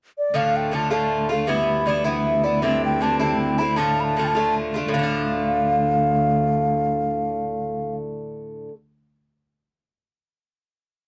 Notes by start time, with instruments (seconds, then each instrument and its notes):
0.18 flute D5
0.34 cello D2, bouzouki A2 D3 A3 F4, flute F5
0.56 flute G5
0.71 bouzouki A2 D3 A3 F4, flute A5
0.90 bouzouki A2 D3 A3 F4, flute A5
1.29 bouzouki D3 A3 F4, flute F5
1.47 bouzouki G2 E3 B3 E4, flute E5
1.86 bouzouki G2 E3 B3 E4, flute D5
2.04 bouzouki G2 E3 B3 E4, flute E5
2.44 bouzouki E3 B3 E4, flute D5
2.62 bouzouki G2 D3 C4 E4, flute E5
2.85 flute G5
3.01 bouzouki G2 D3 C4 E4, flute A5
3.19 bouzouki G2 D3 C4 E4, flute A5
3.41 flute G5
3.58 bouzouki D3 C4 E4, flute B5
3.76 bouzouki A2 D3 A3 F4, flute A5
4.00 flute B5
4.04 flute A5
4.17 bouzouki A2 D3 A3 F4
4.25 flute G5 A5
4.35 bouzouki A2 D3 A3 F4
4.74 bouzouki D3 A3 F4
4.88 cello D2, bouzouki A2, flute F5
4.94 bouzouki D3
4.99 bouzouki A3
5.03 bouzouki F4